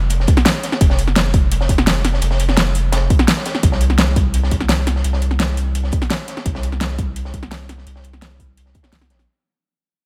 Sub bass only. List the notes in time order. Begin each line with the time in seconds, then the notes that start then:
Already playing: F1
0.81 F1
1.69 F1
2.22 F1
3.63 C2
4.51 C2
5.04 C2
6.46 C2
7.34 C2
7.87 C2
8.93 C2
9.10 A#1